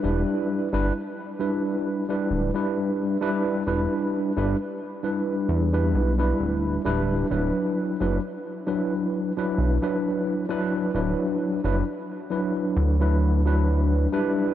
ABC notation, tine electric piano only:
X:1
M:4/4
L:1/16
Q:"Swing 16ths" 1/4=66
K:Dmix
V:1 name="Tine electric piano"
[G,DEB]3 [G,DEB] z2 [G,DEB]3 [G,DEB]2 [G,DEB]3 [G,DEB]2 | [G,DEB]3 [G,DEB] z2 [G,DEB]3 [G,DEB]2 [G,DEB]3 [G,DEB]2 | [F,DEB]3 [F,DEB] z2 [F,DEB]3 [F,DEB]2 [F,DEB]3 [F,DEB]2 | [F,DEB]3 [F,DEB] z2 [F,DEB]3 [F,DEB]2 [F,DEB]3 [G,DEB]2 |]